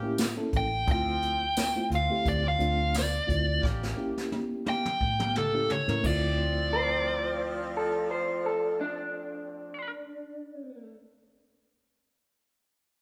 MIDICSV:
0, 0, Header, 1, 7, 480
1, 0, Start_track
1, 0, Key_signature, -1, "minor"
1, 0, Tempo, 688073
1, 610, Time_signature, 4, 2, 24, 8
1, 9080, End_track
2, 0, Start_track
2, 0, Title_t, "Lead electric guitar"
2, 0, Program_c, 0, 29
2, 398, Note_on_c, 0, 79, 89
2, 617, Note_off_c, 0, 79, 0
2, 641, Note_on_c, 0, 79, 91
2, 1324, Note_off_c, 0, 79, 0
2, 1362, Note_on_c, 0, 77, 82
2, 1579, Note_off_c, 0, 77, 0
2, 1596, Note_on_c, 0, 74, 80
2, 1710, Note_off_c, 0, 74, 0
2, 1731, Note_on_c, 0, 77, 77
2, 2055, Note_off_c, 0, 77, 0
2, 2086, Note_on_c, 0, 74, 87
2, 2534, Note_off_c, 0, 74, 0
2, 3274, Note_on_c, 0, 79, 94
2, 3728, Note_off_c, 0, 79, 0
2, 3752, Note_on_c, 0, 69, 82
2, 3974, Note_off_c, 0, 69, 0
2, 3991, Note_on_c, 0, 73, 83
2, 4214, Note_off_c, 0, 73, 0
2, 4233, Note_on_c, 0, 74, 99
2, 6914, Note_off_c, 0, 74, 0
2, 9080, End_track
3, 0, Start_track
3, 0, Title_t, "Clean electric guitar"
3, 0, Program_c, 1, 27
3, 4695, Note_on_c, 1, 72, 95
3, 5391, Note_off_c, 1, 72, 0
3, 5420, Note_on_c, 1, 69, 79
3, 5649, Note_off_c, 1, 69, 0
3, 5658, Note_on_c, 1, 72, 86
3, 5888, Note_off_c, 1, 72, 0
3, 5903, Note_on_c, 1, 69, 81
3, 6130, Note_off_c, 1, 69, 0
3, 6144, Note_on_c, 1, 62, 95
3, 7637, Note_off_c, 1, 62, 0
3, 9080, End_track
4, 0, Start_track
4, 0, Title_t, "Reed electric piano"
4, 0, Program_c, 2, 4
4, 17, Note_on_c, 2, 58, 91
4, 20, Note_on_c, 2, 61, 79
4, 26, Note_on_c, 2, 64, 86
4, 29, Note_on_c, 2, 67, 102
4, 160, Note_off_c, 2, 58, 0
4, 162, Note_off_c, 2, 61, 0
4, 165, Note_off_c, 2, 64, 0
4, 166, Note_off_c, 2, 67, 0
4, 253, Note_on_c, 2, 58, 78
4, 256, Note_on_c, 2, 61, 72
4, 260, Note_on_c, 2, 64, 72
4, 261, Note_on_c, 2, 69, 91
4, 480, Note_off_c, 2, 58, 0
4, 481, Note_off_c, 2, 61, 0
4, 483, Note_off_c, 2, 64, 0
4, 484, Note_off_c, 2, 69, 0
4, 608, Note_on_c, 2, 57, 67
4, 610, Note_on_c, 2, 60, 60
4, 616, Note_on_c, 2, 64, 63
4, 621, Note_on_c, 2, 65, 73
4, 992, Note_off_c, 2, 57, 0
4, 993, Note_off_c, 2, 60, 0
4, 996, Note_off_c, 2, 64, 0
4, 999, Note_off_c, 2, 65, 0
4, 1223, Note_on_c, 2, 57, 70
4, 1226, Note_on_c, 2, 60, 65
4, 1230, Note_on_c, 2, 64, 63
4, 1233, Note_on_c, 2, 65, 72
4, 1363, Note_off_c, 2, 57, 0
4, 1365, Note_off_c, 2, 60, 0
4, 1367, Note_off_c, 2, 64, 0
4, 1368, Note_off_c, 2, 65, 0
4, 1462, Note_on_c, 2, 57, 81
4, 1465, Note_on_c, 2, 60, 69
4, 1471, Note_on_c, 2, 64, 72
4, 1474, Note_on_c, 2, 67, 87
4, 1684, Note_off_c, 2, 57, 0
4, 1686, Note_off_c, 2, 60, 0
4, 1688, Note_off_c, 2, 64, 0
4, 1690, Note_off_c, 2, 67, 0
4, 1805, Note_on_c, 2, 57, 76
4, 1807, Note_on_c, 2, 60, 67
4, 1813, Note_on_c, 2, 62, 70
4, 1817, Note_on_c, 2, 65, 85
4, 2112, Note_off_c, 2, 57, 0
4, 2113, Note_off_c, 2, 60, 0
4, 2116, Note_off_c, 2, 62, 0
4, 2117, Note_off_c, 2, 65, 0
4, 2279, Note_on_c, 2, 57, 64
4, 2283, Note_on_c, 2, 60, 58
4, 2286, Note_on_c, 2, 64, 64
4, 2289, Note_on_c, 2, 65, 74
4, 2525, Note_off_c, 2, 57, 0
4, 2527, Note_off_c, 2, 60, 0
4, 2528, Note_off_c, 2, 64, 0
4, 2529, Note_off_c, 2, 65, 0
4, 2769, Note_on_c, 2, 58, 83
4, 2771, Note_on_c, 2, 61, 77
4, 2774, Note_on_c, 2, 64, 73
4, 2776, Note_on_c, 2, 67, 92
4, 3378, Note_off_c, 2, 58, 0
4, 3379, Note_off_c, 2, 61, 0
4, 3380, Note_off_c, 2, 64, 0
4, 3381, Note_off_c, 2, 67, 0
4, 3857, Note_on_c, 2, 58, 73
4, 3864, Note_on_c, 2, 61, 67
4, 3867, Note_on_c, 2, 64, 71
4, 3870, Note_on_c, 2, 67, 86
4, 4001, Note_off_c, 2, 58, 0
4, 4004, Note_off_c, 2, 61, 0
4, 4005, Note_off_c, 2, 64, 0
4, 4007, Note_off_c, 2, 67, 0
4, 4099, Note_on_c, 2, 58, 77
4, 4102, Note_on_c, 2, 61, 68
4, 4107, Note_on_c, 2, 64, 68
4, 4109, Note_on_c, 2, 70, 88
4, 4190, Note_on_c, 2, 57, 81
4, 4202, Note_on_c, 2, 60, 71
4, 4209, Note_off_c, 2, 58, 0
4, 4210, Note_off_c, 2, 64, 0
4, 4211, Note_off_c, 2, 61, 0
4, 4214, Note_off_c, 2, 70, 0
4, 4218, Note_on_c, 2, 64, 70
4, 4230, Note_on_c, 2, 65, 84
4, 7106, Note_off_c, 2, 57, 0
4, 7118, Note_off_c, 2, 60, 0
4, 7134, Note_off_c, 2, 64, 0
4, 7146, Note_off_c, 2, 65, 0
4, 9080, End_track
5, 0, Start_track
5, 0, Title_t, "Horn section"
5, 0, Program_c, 3, 61
5, 0, Note_on_c, 3, 58, 85
5, 0, Note_on_c, 3, 61, 85
5, 0, Note_on_c, 3, 67, 93
5, 191, Note_off_c, 3, 61, 0
5, 192, Note_off_c, 3, 58, 0
5, 194, Note_off_c, 3, 67, 0
5, 606, Note_on_c, 3, 53, 85
5, 606, Note_on_c, 3, 60, 78
5, 978, Note_off_c, 3, 53, 0
5, 978, Note_off_c, 3, 60, 0
5, 1323, Note_on_c, 3, 60, 76
5, 1323, Note_on_c, 3, 65, 82
5, 1330, Note_on_c, 3, 64, 71
5, 1511, Note_off_c, 3, 60, 0
5, 1512, Note_off_c, 3, 65, 0
5, 1515, Note_off_c, 3, 64, 0
5, 1683, Note_on_c, 3, 60, 69
5, 1685, Note_on_c, 3, 62, 70
5, 1686, Note_on_c, 3, 65, 82
5, 2106, Note_off_c, 3, 60, 0
5, 2107, Note_off_c, 3, 62, 0
5, 2108, Note_off_c, 3, 65, 0
5, 2517, Note_on_c, 3, 58, 71
5, 2520, Note_on_c, 3, 61, 65
5, 2520, Note_on_c, 3, 67, 86
5, 2894, Note_off_c, 3, 58, 0
5, 2895, Note_off_c, 3, 67, 0
5, 2896, Note_off_c, 3, 61, 0
5, 3245, Note_on_c, 3, 58, 76
5, 3253, Note_on_c, 3, 61, 66
5, 3254, Note_on_c, 3, 67, 81
5, 3433, Note_off_c, 3, 58, 0
5, 3437, Note_off_c, 3, 61, 0
5, 3437, Note_off_c, 3, 67, 0
5, 3621, Note_on_c, 3, 61, 63
5, 3623, Note_on_c, 3, 58, 74
5, 3623, Note_on_c, 3, 67, 80
5, 4036, Note_off_c, 3, 58, 0
5, 4036, Note_off_c, 3, 61, 0
5, 4037, Note_off_c, 3, 67, 0
5, 4216, Note_on_c, 3, 53, 105
5, 4219, Note_on_c, 3, 60, 83
5, 6905, Note_off_c, 3, 53, 0
5, 6907, Note_off_c, 3, 60, 0
5, 9080, End_track
6, 0, Start_track
6, 0, Title_t, "Fingered electric bass"
6, 0, Program_c, 4, 33
6, 0, Note_on_c, 4, 45, 100
6, 270, Note_off_c, 4, 45, 0
6, 372, Note_on_c, 4, 33, 83
6, 610, Note_off_c, 4, 33, 0
6, 610, Note_on_c, 4, 38, 97
6, 1228, Note_off_c, 4, 38, 0
6, 1328, Note_on_c, 4, 38, 86
6, 1441, Note_off_c, 4, 38, 0
6, 1574, Note_on_c, 4, 38, 85
6, 1778, Note_off_c, 4, 38, 0
6, 1811, Note_on_c, 4, 38, 90
6, 2223, Note_off_c, 4, 38, 0
6, 2296, Note_on_c, 4, 38, 94
6, 2499, Note_off_c, 4, 38, 0
6, 2536, Note_on_c, 4, 33, 93
6, 2740, Note_off_c, 4, 33, 0
6, 3493, Note_on_c, 4, 45, 90
6, 4016, Note_off_c, 4, 45, 0
6, 4102, Note_on_c, 4, 45, 83
6, 4200, Note_off_c, 4, 45, 0
6, 4211, Note_on_c, 4, 38, 87
6, 7127, Note_off_c, 4, 38, 0
6, 9080, End_track
7, 0, Start_track
7, 0, Title_t, "Drums"
7, 128, Note_on_c, 9, 42, 81
7, 128, Note_on_c, 9, 54, 101
7, 132, Note_on_c, 9, 38, 105
7, 198, Note_off_c, 9, 42, 0
7, 198, Note_off_c, 9, 54, 0
7, 202, Note_off_c, 9, 38, 0
7, 369, Note_on_c, 9, 42, 66
7, 370, Note_on_c, 9, 36, 85
7, 439, Note_off_c, 9, 42, 0
7, 440, Note_off_c, 9, 36, 0
7, 610, Note_on_c, 9, 42, 79
7, 611, Note_on_c, 9, 36, 117
7, 680, Note_off_c, 9, 42, 0
7, 681, Note_off_c, 9, 36, 0
7, 852, Note_on_c, 9, 42, 61
7, 922, Note_off_c, 9, 42, 0
7, 1093, Note_on_c, 9, 42, 78
7, 1093, Note_on_c, 9, 54, 107
7, 1098, Note_on_c, 9, 38, 104
7, 1163, Note_off_c, 9, 42, 0
7, 1163, Note_off_c, 9, 54, 0
7, 1167, Note_off_c, 9, 38, 0
7, 1334, Note_on_c, 9, 42, 61
7, 1404, Note_off_c, 9, 42, 0
7, 1574, Note_on_c, 9, 36, 84
7, 1575, Note_on_c, 9, 42, 77
7, 1643, Note_off_c, 9, 36, 0
7, 1645, Note_off_c, 9, 42, 0
7, 1814, Note_on_c, 9, 42, 59
7, 1884, Note_off_c, 9, 42, 0
7, 2055, Note_on_c, 9, 42, 74
7, 2055, Note_on_c, 9, 54, 103
7, 2059, Note_on_c, 9, 38, 106
7, 2125, Note_off_c, 9, 42, 0
7, 2125, Note_off_c, 9, 54, 0
7, 2129, Note_off_c, 9, 38, 0
7, 2295, Note_on_c, 9, 36, 78
7, 2298, Note_on_c, 9, 42, 58
7, 2364, Note_off_c, 9, 36, 0
7, 2368, Note_off_c, 9, 42, 0
7, 2535, Note_on_c, 9, 36, 106
7, 2543, Note_on_c, 9, 38, 61
7, 2605, Note_off_c, 9, 36, 0
7, 2613, Note_off_c, 9, 38, 0
7, 2673, Note_on_c, 9, 38, 51
7, 2743, Note_off_c, 9, 38, 0
7, 2912, Note_on_c, 9, 38, 52
7, 2982, Note_off_c, 9, 38, 0
7, 3014, Note_on_c, 9, 48, 70
7, 3084, Note_off_c, 9, 48, 0
7, 3253, Note_on_c, 9, 48, 77
7, 3323, Note_off_c, 9, 48, 0
7, 3387, Note_on_c, 9, 47, 67
7, 3457, Note_off_c, 9, 47, 0
7, 3494, Note_on_c, 9, 36, 88
7, 3564, Note_off_c, 9, 36, 0
7, 3626, Note_on_c, 9, 47, 67
7, 3695, Note_off_c, 9, 47, 0
7, 3736, Note_on_c, 9, 45, 87
7, 3806, Note_off_c, 9, 45, 0
7, 3975, Note_on_c, 9, 45, 89
7, 4045, Note_off_c, 9, 45, 0
7, 4105, Note_on_c, 9, 43, 80
7, 4175, Note_off_c, 9, 43, 0
7, 4213, Note_on_c, 9, 36, 100
7, 4213, Note_on_c, 9, 49, 84
7, 4283, Note_off_c, 9, 36, 0
7, 4283, Note_off_c, 9, 49, 0
7, 9080, End_track
0, 0, End_of_file